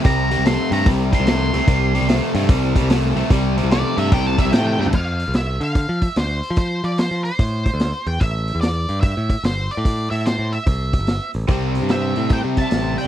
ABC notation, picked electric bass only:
X:1
M:4/4
L:1/16
Q:"Swing" 1/4=146
K:C
V:1 name="Picked electric bass" clef=bass
C,,3 C,,2 z G,,2 C,,2 z C,,3 C,, z | C,,3 C,,2 z G,,2 C,,2 z C,,3 C,, z | C,,3 C,,2 z G,,2 C,,2 z C,, A,,2 G,,2 | F,,3 C,,3 D,3 F,2 z D,,2 z F,- |
F,2 F,3 F,2 z A,,3 D,,2 z E,,2 | A,,,3 E,,3 G,,3 A,,2 z G,,,2 z A,,- | A,,2 A,,3 A,,2 z C,,3 G,,,2 z A,,,2 | C,,3 G,,3 A,,3 C,2 z A,,,2 z2 |]